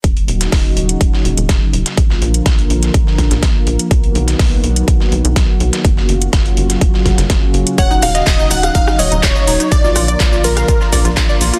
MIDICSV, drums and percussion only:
0, 0, Header, 1, 2, 480
1, 0, Start_track
1, 0, Key_signature, -6, "minor"
1, 0, Tempo, 483871
1, 40, Time_signature, 4, 2, 24, 8
1, 11499, End_track
2, 0, Start_track
2, 0, Title_t, "Drums"
2, 39, Note_on_c, 9, 36, 109
2, 40, Note_on_c, 9, 42, 51
2, 138, Note_off_c, 9, 36, 0
2, 139, Note_off_c, 9, 42, 0
2, 165, Note_on_c, 9, 42, 42
2, 264, Note_off_c, 9, 42, 0
2, 280, Note_on_c, 9, 42, 68
2, 379, Note_off_c, 9, 42, 0
2, 404, Note_on_c, 9, 42, 68
2, 405, Note_on_c, 9, 38, 49
2, 503, Note_off_c, 9, 42, 0
2, 504, Note_off_c, 9, 38, 0
2, 519, Note_on_c, 9, 36, 113
2, 520, Note_on_c, 9, 38, 110
2, 520, Note_on_c, 9, 46, 76
2, 521, Note_on_c, 9, 42, 49
2, 618, Note_off_c, 9, 36, 0
2, 619, Note_off_c, 9, 38, 0
2, 619, Note_off_c, 9, 46, 0
2, 620, Note_off_c, 9, 42, 0
2, 761, Note_on_c, 9, 42, 68
2, 860, Note_off_c, 9, 42, 0
2, 884, Note_on_c, 9, 42, 70
2, 983, Note_off_c, 9, 42, 0
2, 999, Note_on_c, 9, 36, 116
2, 1000, Note_on_c, 9, 42, 52
2, 1001, Note_off_c, 9, 42, 0
2, 1001, Note_on_c, 9, 42, 82
2, 1098, Note_off_c, 9, 36, 0
2, 1100, Note_off_c, 9, 42, 0
2, 1125, Note_on_c, 9, 38, 40
2, 1224, Note_off_c, 9, 38, 0
2, 1241, Note_on_c, 9, 42, 63
2, 1340, Note_off_c, 9, 42, 0
2, 1364, Note_on_c, 9, 42, 66
2, 1463, Note_off_c, 9, 42, 0
2, 1479, Note_on_c, 9, 36, 113
2, 1479, Note_on_c, 9, 42, 52
2, 1480, Note_off_c, 9, 42, 0
2, 1480, Note_on_c, 9, 38, 111
2, 1480, Note_on_c, 9, 42, 86
2, 1578, Note_off_c, 9, 36, 0
2, 1579, Note_off_c, 9, 38, 0
2, 1579, Note_off_c, 9, 42, 0
2, 1721, Note_on_c, 9, 42, 68
2, 1820, Note_off_c, 9, 42, 0
2, 1844, Note_on_c, 9, 38, 52
2, 1845, Note_on_c, 9, 42, 69
2, 1943, Note_off_c, 9, 38, 0
2, 1944, Note_off_c, 9, 42, 0
2, 1959, Note_on_c, 9, 36, 119
2, 1960, Note_on_c, 9, 42, 82
2, 2058, Note_off_c, 9, 36, 0
2, 2059, Note_off_c, 9, 42, 0
2, 2085, Note_on_c, 9, 38, 38
2, 2184, Note_off_c, 9, 38, 0
2, 2200, Note_on_c, 9, 42, 67
2, 2299, Note_off_c, 9, 42, 0
2, 2324, Note_on_c, 9, 42, 65
2, 2423, Note_off_c, 9, 42, 0
2, 2439, Note_on_c, 9, 36, 118
2, 2440, Note_on_c, 9, 38, 110
2, 2440, Note_on_c, 9, 42, 84
2, 2538, Note_off_c, 9, 36, 0
2, 2539, Note_off_c, 9, 38, 0
2, 2539, Note_off_c, 9, 42, 0
2, 2565, Note_on_c, 9, 42, 43
2, 2664, Note_off_c, 9, 42, 0
2, 2680, Note_on_c, 9, 42, 68
2, 2779, Note_off_c, 9, 42, 0
2, 2804, Note_on_c, 9, 42, 68
2, 2805, Note_on_c, 9, 38, 44
2, 2903, Note_off_c, 9, 42, 0
2, 2904, Note_off_c, 9, 38, 0
2, 2919, Note_on_c, 9, 36, 124
2, 2920, Note_on_c, 9, 42, 80
2, 3018, Note_off_c, 9, 36, 0
2, 3019, Note_off_c, 9, 42, 0
2, 3046, Note_on_c, 9, 38, 37
2, 3145, Note_off_c, 9, 38, 0
2, 3159, Note_on_c, 9, 36, 60
2, 3160, Note_on_c, 9, 38, 54
2, 3160, Note_on_c, 9, 42, 67
2, 3258, Note_off_c, 9, 36, 0
2, 3259, Note_off_c, 9, 38, 0
2, 3259, Note_off_c, 9, 42, 0
2, 3283, Note_on_c, 9, 38, 50
2, 3284, Note_on_c, 9, 42, 61
2, 3382, Note_off_c, 9, 38, 0
2, 3383, Note_off_c, 9, 42, 0
2, 3399, Note_on_c, 9, 36, 122
2, 3399, Note_on_c, 9, 38, 114
2, 3399, Note_on_c, 9, 42, 85
2, 3400, Note_off_c, 9, 42, 0
2, 3400, Note_on_c, 9, 42, 50
2, 3498, Note_off_c, 9, 36, 0
2, 3498, Note_off_c, 9, 38, 0
2, 3499, Note_off_c, 9, 42, 0
2, 3638, Note_on_c, 9, 42, 65
2, 3738, Note_off_c, 9, 42, 0
2, 3764, Note_on_c, 9, 42, 66
2, 3863, Note_off_c, 9, 42, 0
2, 3879, Note_on_c, 9, 36, 123
2, 3879, Note_on_c, 9, 42, 84
2, 3880, Note_off_c, 9, 42, 0
2, 3880, Note_on_c, 9, 42, 49
2, 3978, Note_off_c, 9, 36, 0
2, 3979, Note_off_c, 9, 42, 0
2, 4003, Note_on_c, 9, 42, 41
2, 4102, Note_off_c, 9, 42, 0
2, 4119, Note_on_c, 9, 42, 67
2, 4218, Note_off_c, 9, 42, 0
2, 4243, Note_on_c, 9, 38, 48
2, 4245, Note_on_c, 9, 42, 67
2, 4342, Note_off_c, 9, 38, 0
2, 4344, Note_off_c, 9, 42, 0
2, 4359, Note_on_c, 9, 36, 119
2, 4359, Note_on_c, 9, 38, 112
2, 4359, Note_on_c, 9, 46, 76
2, 4361, Note_on_c, 9, 42, 47
2, 4458, Note_off_c, 9, 36, 0
2, 4458, Note_off_c, 9, 38, 0
2, 4458, Note_off_c, 9, 46, 0
2, 4460, Note_off_c, 9, 42, 0
2, 4599, Note_on_c, 9, 42, 68
2, 4699, Note_off_c, 9, 42, 0
2, 4725, Note_on_c, 9, 42, 63
2, 4824, Note_off_c, 9, 42, 0
2, 4839, Note_on_c, 9, 36, 126
2, 4839, Note_on_c, 9, 42, 82
2, 4841, Note_off_c, 9, 42, 0
2, 4841, Note_on_c, 9, 42, 47
2, 4938, Note_off_c, 9, 36, 0
2, 4940, Note_off_c, 9, 42, 0
2, 4963, Note_on_c, 9, 38, 40
2, 5062, Note_off_c, 9, 38, 0
2, 5079, Note_on_c, 9, 42, 65
2, 5178, Note_off_c, 9, 42, 0
2, 5205, Note_on_c, 9, 42, 62
2, 5304, Note_off_c, 9, 42, 0
2, 5318, Note_on_c, 9, 38, 114
2, 5318, Note_on_c, 9, 42, 86
2, 5319, Note_on_c, 9, 36, 119
2, 5321, Note_off_c, 9, 42, 0
2, 5321, Note_on_c, 9, 42, 50
2, 5418, Note_off_c, 9, 36, 0
2, 5418, Note_off_c, 9, 38, 0
2, 5420, Note_off_c, 9, 42, 0
2, 5559, Note_on_c, 9, 42, 68
2, 5658, Note_off_c, 9, 42, 0
2, 5684, Note_on_c, 9, 38, 57
2, 5685, Note_on_c, 9, 42, 62
2, 5783, Note_off_c, 9, 38, 0
2, 5785, Note_off_c, 9, 42, 0
2, 5799, Note_on_c, 9, 36, 118
2, 5799, Note_on_c, 9, 42, 84
2, 5801, Note_off_c, 9, 42, 0
2, 5801, Note_on_c, 9, 42, 46
2, 5898, Note_off_c, 9, 36, 0
2, 5901, Note_off_c, 9, 42, 0
2, 5924, Note_on_c, 9, 38, 37
2, 6024, Note_off_c, 9, 38, 0
2, 6039, Note_on_c, 9, 42, 67
2, 6138, Note_off_c, 9, 42, 0
2, 6166, Note_on_c, 9, 42, 64
2, 6265, Note_off_c, 9, 42, 0
2, 6279, Note_on_c, 9, 36, 113
2, 6279, Note_on_c, 9, 38, 110
2, 6279, Note_on_c, 9, 42, 82
2, 6281, Note_off_c, 9, 42, 0
2, 6281, Note_on_c, 9, 42, 46
2, 6378, Note_off_c, 9, 36, 0
2, 6378, Note_off_c, 9, 38, 0
2, 6380, Note_off_c, 9, 42, 0
2, 6404, Note_on_c, 9, 42, 43
2, 6503, Note_off_c, 9, 42, 0
2, 6518, Note_on_c, 9, 42, 68
2, 6618, Note_off_c, 9, 42, 0
2, 6643, Note_on_c, 9, 38, 43
2, 6645, Note_on_c, 9, 42, 64
2, 6742, Note_off_c, 9, 38, 0
2, 6744, Note_off_c, 9, 42, 0
2, 6759, Note_on_c, 9, 36, 123
2, 6759, Note_on_c, 9, 42, 82
2, 6761, Note_off_c, 9, 42, 0
2, 6761, Note_on_c, 9, 42, 46
2, 6859, Note_off_c, 9, 36, 0
2, 6860, Note_off_c, 9, 42, 0
2, 6883, Note_on_c, 9, 38, 39
2, 6982, Note_off_c, 9, 38, 0
2, 6999, Note_on_c, 9, 36, 62
2, 7000, Note_on_c, 9, 38, 53
2, 7000, Note_on_c, 9, 42, 69
2, 7099, Note_off_c, 9, 36, 0
2, 7099, Note_off_c, 9, 38, 0
2, 7099, Note_off_c, 9, 42, 0
2, 7124, Note_on_c, 9, 38, 51
2, 7125, Note_on_c, 9, 42, 58
2, 7223, Note_off_c, 9, 38, 0
2, 7225, Note_off_c, 9, 42, 0
2, 7239, Note_on_c, 9, 36, 120
2, 7239, Note_on_c, 9, 38, 113
2, 7239, Note_on_c, 9, 42, 84
2, 7242, Note_off_c, 9, 42, 0
2, 7242, Note_on_c, 9, 42, 51
2, 7338, Note_off_c, 9, 38, 0
2, 7339, Note_off_c, 9, 36, 0
2, 7341, Note_off_c, 9, 42, 0
2, 7480, Note_on_c, 9, 42, 67
2, 7579, Note_off_c, 9, 42, 0
2, 7605, Note_on_c, 9, 42, 62
2, 7705, Note_off_c, 9, 42, 0
2, 7720, Note_on_c, 9, 36, 117
2, 7720, Note_on_c, 9, 42, 86
2, 7721, Note_off_c, 9, 42, 0
2, 7721, Note_on_c, 9, 42, 49
2, 7722, Note_on_c, 9, 82, 43
2, 7819, Note_off_c, 9, 36, 0
2, 7820, Note_off_c, 9, 42, 0
2, 7821, Note_off_c, 9, 82, 0
2, 7844, Note_on_c, 9, 42, 44
2, 7845, Note_on_c, 9, 82, 22
2, 7944, Note_off_c, 9, 42, 0
2, 7945, Note_off_c, 9, 82, 0
2, 7960, Note_on_c, 9, 42, 67
2, 7961, Note_on_c, 9, 37, 60
2, 7961, Note_on_c, 9, 46, 101
2, 7961, Note_on_c, 9, 82, 76
2, 8060, Note_off_c, 9, 37, 0
2, 8060, Note_off_c, 9, 42, 0
2, 8060, Note_off_c, 9, 46, 0
2, 8060, Note_off_c, 9, 82, 0
2, 8085, Note_on_c, 9, 38, 51
2, 8085, Note_on_c, 9, 42, 65
2, 8085, Note_on_c, 9, 82, 34
2, 8184, Note_off_c, 9, 38, 0
2, 8184, Note_off_c, 9, 42, 0
2, 8184, Note_off_c, 9, 82, 0
2, 8199, Note_on_c, 9, 36, 116
2, 8201, Note_on_c, 9, 38, 113
2, 8201, Note_on_c, 9, 42, 47
2, 8201, Note_on_c, 9, 46, 79
2, 8202, Note_on_c, 9, 82, 42
2, 8203, Note_on_c, 9, 39, 102
2, 8298, Note_off_c, 9, 36, 0
2, 8300, Note_off_c, 9, 38, 0
2, 8300, Note_off_c, 9, 46, 0
2, 8301, Note_off_c, 9, 42, 0
2, 8301, Note_off_c, 9, 82, 0
2, 8302, Note_off_c, 9, 39, 0
2, 8325, Note_on_c, 9, 82, 22
2, 8425, Note_off_c, 9, 82, 0
2, 8440, Note_on_c, 9, 42, 70
2, 8440, Note_on_c, 9, 46, 87
2, 8441, Note_on_c, 9, 82, 77
2, 8539, Note_off_c, 9, 42, 0
2, 8539, Note_off_c, 9, 46, 0
2, 8540, Note_off_c, 9, 82, 0
2, 8565, Note_on_c, 9, 37, 68
2, 8565, Note_on_c, 9, 42, 62
2, 8565, Note_on_c, 9, 82, 34
2, 8664, Note_off_c, 9, 37, 0
2, 8664, Note_off_c, 9, 42, 0
2, 8664, Note_off_c, 9, 82, 0
2, 8679, Note_on_c, 9, 36, 117
2, 8679, Note_on_c, 9, 42, 47
2, 8680, Note_off_c, 9, 42, 0
2, 8680, Note_on_c, 9, 42, 82
2, 8680, Note_on_c, 9, 82, 43
2, 8778, Note_off_c, 9, 36, 0
2, 8779, Note_off_c, 9, 82, 0
2, 8780, Note_off_c, 9, 42, 0
2, 8804, Note_on_c, 9, 37, 81
2, 8804, Note_on_c, 9, 38, 41
2, 8804, Note_on_c, 9, 82, 23
2, 8903, Note_off_c, 9, 37, 0
2, 8903, Note_off_c, 9, 38, 0
2, 8904, Note_off_c, 9, 82, 0
2, 8919, Note_on_c, 9, 46, 98
2, 8920, Note_on_c, 9, 42, 66
2, 8920, Note_on_c, 9, 82, 77
2, 9019, Note_off_c, 9, 42, 0
2, 9019, Note_off_c, 9, 46, 0
2, 9019, Note_off_c, 9, 82, 0
2, 9044, Note_on_c, 9, 42, 62
2, 9044, Note_on_c, 9, 82, 34
2, 9143, Note_off_c, 9, 42, 0
2, 9143, Note_off_c, 9, 82, 0
2, 9158, Note_on_c, 9, 42, 47
2, 9159, Note_on_c, 9, 36, 117
2, 9159, Note_on_c, 9, 82, 42
2, 9160, Note_off_c, 9, 42, 0
2, 9160, Note_on_c, 9, 38, 113
2, 9160, Note_on_c, 9, 39, 111
2, 9160, Note_on_c, 9, 42, 86
2, 9258, Note_off_c, 9, 36, 0
2, 9258, Note_off_c, 9, 82, 0
2, 9259, Note_off_c, 9, 38, 0
2, 9259, Note_off_c, 9, 39, 0
2, 9259, Note_off_c, 9, 42, 0
2, 9282, Note_on_c, 9, 82, 22
2, 9382, Note_off_c, 9, 82, 0
2, 9399, Note_on_c, 9, 46, 87
2, 9399, Note_on_c, 9, 82, 73
2, 9400, Note_on_c, 9, 42, 68
2, 9498, Note_off_c, 9, 46, 0
2, 9498, Note_off_c, 9, 82, 0
2, 9499, Note_off_c, 9, 42, 0
2, 9524, Note_on_c, 9, 42, 62
2, 9524, Note_on_c, 9, 82, 35
2, 9623, Note_off_c, 9, 42, 0
2, 9623, Note_off_c, 9, 82, 0
2, 9639, Note_on_c, 9, 36, 113
2, 9639, Note_on_c, 9, 42, 50
2, 9639, Note_on_c, 9, 82, 44
2, 9640, Note_off_c, 9, 42, 0
2, 9640, Note_on_c, 9, 42, 85
2, 9738, Note_off_c, 9, 36, 0
2, 9738, Note_off_c, 9, 82, 0
2, 9740, Note_off_c, 9, 42, 0
2, 9763, Note_on_c, 9, 82, 23
2, 9764, Note_on_c, 9, 38, 39
2, 9862, Note_off_c, 9, 82, 0
2, 9863, Note_off_c, 9, 38, 0
2, 9877, Note_on_c, 9, 37, 60
2, 9877, Note_on_c, 9, 46, 100
2, 9878, Note_on_c, 9, 82, 79
2, 9881, Note_on_c, 9, 42, 71
2, 9977, Note_off_c, 9, 37, 0
2, 9977, Note_off_c, 9, 46, 0
2, 9977, Note_off_c, 9, 82, 0
2, 9980, Note_off_c, 9, 42, 0
2, 10002, Note_on_c, 9, 42, 66
2, 10002, Note_on_c, 9, 82, 35
2, 10101, Note_off_c, 9, 42, 0
2, 10102, Note_off_c, 9, 82, 0
2, 10118, Note_on_c, 9, 42, 47
2, 10118, Note_on_c, 9, 82, 42
2, 10119, Note_off_c, 9, 42, 0
2, 10119, Note_on_c, 9, 36, 111
2, 10119, Note_on_c, 9, 38, 117
2, 10119, Note_on_c, 9, 39, 103
2, 10119, Note_on_c, 9, 42, 84
2, 10218, Note_off_c, 9, 36, 0
2, 10218, Note_off_c, 9, 38, 0
2, 10218, Note_off_c, 9, 42, 0
2, 10218, Note_off_c, 9, 82, 0
2, 10219, Note_off_c, 9, 39, 0
2, 10243, Note_on_c, 9, 42, 43
2, 10243, Note_on_c, 9, 82, 23
2, 10342, Note_off_c, 9, 42, 0
2, 10342, Note_off_c, 9, 82, 0
2, 10359, Note_on_c, 9, 46, 86
2, 10359, Note_on_c, 9, 82, 77
2, 10360, Note_on_c, 9, 42, 72
2, 10458, Note_off_c, 9, 46, 0
2, 10458, Note_off_c, 9, 82, 0
2, 10459, Note_off_c, 9, 42, 0
2, 10483, Note_on_c, 9, 37, 68
2, 10483, Note_on_c, 9, 42, 67
2, 10483, Note_on_c, 9, 82, 36
2, 10484, Note_on_c, 9, 38, 44
2, 10582, Note_off_c, 9, 37, 0
2, 10582, Note_off_c, 9, 42, 0
2, 10582, Note_off_c, 9, 82, 0
2, 10583, Note_off_c, 9, 38, 0
2, 10598, Note_on_c, 9, 42, 52
2, 10599, Note_on_c, 9, 36, 116
2, 10599, Note_on_c, 9, 82, 44
2, 10600, Note_off_c, 9, 42, 0
2, 10600, Note_on_c, 9, 42, 83
2, 10698, Note_off_c, 9, 36, 0
2, 10698, Note_off_c, 9, 82, 0
2, 10699, Note_off_c, 9, 42, 0
2, 10723, Note_on_c, 9, 82, 23
2, 10724, Note_on_c, 9, 38, 39
2, 10823, Note_off_c, 9, 38, 0
2, 10823, Note_off_c, 9, 82, 0
2, 10838, Note_on_c, 9, 36, 58
2, 10838, Note_on_c, 9, 46, 94
2, 10838, Note_on_c, 9, 82, 79
2, 10839, Note_on_c, 9, 38, 53
2, 10839, Note_on_c, 9, 42, 67
2, 10937, Note_off_c, 9, 46, 0
2, 10938, Note_off_c, 9, 36, 0
2, 10938, Note_off_c, 9, 38, 0
2, 10938, Note_off_c, 9, 42, 0
2, 10938, Note_off_c, 9, 82, 0
2, 10962, Note_on_c, 9, 42, 62
2, 10963, Note_on_c, 9, 38, 53
2, 10963, Note_on_c, 9, 82, 34
2, 11062, Note_off_c, 9, 38, 0
2, 11062, Note_off_c, 9, 42, 0
2, 11062, Note_off_c, 9, 82, 0
2, 11078, Note_on_c, 9, 36, 115
2, 11079, Note_on_c, 9, 38, 116
2, 11079, Note_on_c, 9, 42, 50
2, 11079, Note_on_c, 9, 82, 47
2, 11080, Note_on_c, 9, 39, 112
2, 11178, Note_off_c, 9, 36, 0
2, 11178, Note_off_c, 9, 38, 0
2, 11178, Note_off_c, 9, 42, 0
2, 11178, Note_off_c, 9, 82, 0
2, 11179, Note_off_c, 9, 39, 0
2, 11203, Note_on_c, 9, 82, 23
2, 11302, Note_off_c, 9, 82, 0
2, 11318, Note_on_c, 9, 42, 69
2, 11318, Note_on_c, 9, 46, 87
2, 11318, Note_on_c, 9, 82, 75
2, 11417, Note_off_c, 9, 42, 0
2, 11417, Note_off_c, 9, 46, 0
2, 11417, Note_off_c, 9, 82, 0
2, 11443, Note_on_c, 9, 42, 64
2, 11444, Note_on_c, 9, 82, 35
2, 11499, Note_off_c, 9, 42, 0
2, 11499, Note_off_c, 9, 82, 0
2, 11499, End_track
0, 0, End_of_file